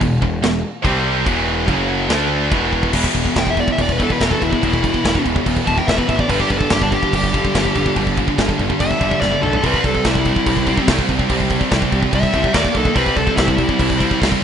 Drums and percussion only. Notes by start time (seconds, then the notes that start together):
0.01 kick, crash
0.22 kick
0.43 snare, crash
0.85 kick, crash
1.26 kick, crash
1.68 kick, crash
2.10 snare, crash
2.52 kick, crash
2.73 kick
2.83 kick
2.93 kick, crash
3.04 kick
3.14 kick, crash
3.25 kick
3.36 kick, snare, crash
3.47 kick
3.57 kick, crash
3.68 kick
3.78 kick, crash
3.89 kick
4.00 kick, crash
4.10 kick
4.21 kick, snare, crash
4.31 kick
4.42 kick, crash
4.53 kick
4.63 kick, crash
4.74 kick
4.84 kick, crash
4.94 kick
5.05 kick, snare, crash
5.15 kick
5.26 kick, crash
5.36 kick
5.46 kick, crash
5.57 kick
5.67 kick, crash
5.78 kick
5.88 kick, snare, crash
5.98 kick
6.09 kick, crash
6.19 kick
6.29 kick, crash
6.40 kick
6.50 kick, crash
6.61 kick
6.70 kick, snare, crash
6.82 kick
6.92 kick, crash
7.03 kick
7.13 kick, crash
7.24 kick
7.34 kick, crash
7.45 kick
7.55 kick, snare, crash
7.65 kick
7.75 kick, crash
7.86 kick
7.96 kick, crash
8.07 kick
8.17 kick, crash
8.28 kick
8.38 kick, snare, crash
8.49 kick
8.59 kick, crash
8.70 kick
8.80 kick, crash
8.91 kick
9.01 kick, crash
9.11 kick
9.22 kick, snare
9.32 high tom
9.43 mid tom
9.53 floor tom
9.64 kick, crash
9.74 kick
9.84 kick, crash
9.95 kick
10.04 kick, snare, crash
10.15 kick
10.25 kick, crash
10.36 kick
10.46 kick, crash
10.57 kick
10.66 kick, crash
10.78 kick
10.88 kick, snare, crash
10.99 kick
11.09 kick, crash
11.19 kick
11.30 kick, crash
11.40 kick
11.50 kick, crash
11.61 kick
11.71 kick, snare, crash
11.82 kick
11.92 kick, crash
12.03 kick
12.13 kick, crash
12.23 kick
12.34 kick, crash
12.44 kick
12.54 kick, snare, crash
12.65 kick
12.74 kick, crash
12.85 kick
12.95 kick, crash
13.06 kick
13.16 kick, crash
13.27 kick
13.38 kick, snare, crash
13.48 kick
13.58 kick, crash
13.69 kick
13.79 kick, crash
13.90 kick
14.00 kick, crash
14.11 kick
14.22 kick, snare, crash
14.32 kick